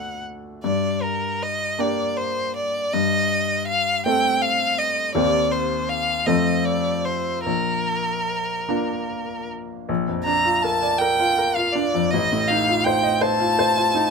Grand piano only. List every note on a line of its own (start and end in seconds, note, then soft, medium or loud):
0.00 0.67 D2 soft
0.00 0.60 A3 soft
0.00 0.60 D4 soft
0.00 0.60 A4 soft
0.64 1.76 G2 soft
1.79 2.89 A#3 soft
1.79 2.89 D4 soft
1.79 2.90 G4 soft
2.94 4.02 G2 soft
4.06 5.12 A3 soft
4.06 5.12 C4 soft
4.06 5.13 A4 soft
5.15 6.23 D#2 soft
5.15 6.22 A#3 soft
5.15 6.22 C4 soft
5.15 6.22 G4 soft
6.27 7.42 F2 soft
6.27 7.41 A3 soft
6.27 7.42 C4 soft
6.27 7.42 F4 soft
7.46 8.65 A#1 soft
8.69 9.86 A#3 soft
8.69 9.85 D4 soft
8.69 9.86 F4 soft
9.89 12.09 A#1 medium
10.08 10.38 F2 soft
10.26 10.56 D4 soft
10.45 10.75 F4 soft
10.64 10.94 A#4 soft
10.82 11.12 D5 soft
11.01 11.31 A#4 soft
11.20 11.50 F4 soft
11.38 11.68 A#4 soft
11.57 11.87 F4 soft
11.75 12.05 D4 soft
11.95 12.13 F2 soft
12.13 14.10 A1 medium
12.32 12.62 A2 soft
12.50 12.80 D#4 soft
12.69 12.98 F4 soft
12.86 13.16 C5 soft
13.03 13.33 D#5 soft
13.21 13.51 C5 medium
13.40 13.69 F4 soft
13.59 13.88 C5 soft
13.77 14.06 F4 soft
13.95 14.10 D#4 soft